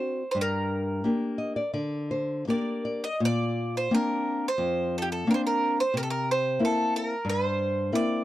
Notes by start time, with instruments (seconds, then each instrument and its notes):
Already playing: nylon-string guitar C4 D4 F#4, mandolin C5
0.31 nylon-string guitar G2, mandolin C5
0.41 mandolin A#4
1.04 nylon-string guitar A#3 D4 G4
1.38 nylon-string guitar D#5
1.56 nylon-string guitar D5
1.74 nylon-string guitar D3 D5
2.11 nylon-string guitar C5
2.47 nylon-string guitar A#3 D4 G4 A#4, mandolin D5
2.85 nylon-string guitar D5
3.04 mandolin D#5
3.20 nylon-string guitar A#2
3.25 mandolin D5
3.77 mandolin C5
3.91 nylon-string guitar A#3 C4 D4, mandolin A#4
4.48 mandolin C5
4.58 nylon-string guitar F2
4.98 mandolin A4
5.02 mandolin G4
5.12 mandolin A4
5.27 nylon-string guitar A#3 C4 D4, mandolin A#4
5.34 mandolin C5
5.47 mandolin A#4
5.80 mandolin C5
5.94 nylon-string guitar C3, mandolin A#4
6.03 mandolin A4
6.10 mandolin A#4
6.31 mandolin C5
6.59 nylon-string guitar A#3 C4 E4
6.65 mandolin A4
6.96 mandolin A#4
7.25 nylon-string guitar G2
7.29 mandolin C5
7.92 nylon-string guitar A#3 C4 E4, mandolin D5